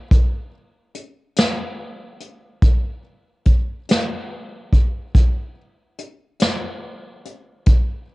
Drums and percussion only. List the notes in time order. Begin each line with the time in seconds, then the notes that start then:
0.11 kick, closed hi-hat
0.95 closed hi-hat
1.36 snare, closed hi-hat
2.20 closed hi-hat
2.62 kick, closed hi-hat
3.45 kick, closed hi-hat
3.89 snare, closed hi-hat
4.73 kick, closed hi-hat
5.15 kick, closed hi-hat
5.98 closed hi-hat
6.40 snare, closed hi-hat
7.25 closed hi-hat
7.66 kick, closed hi-hat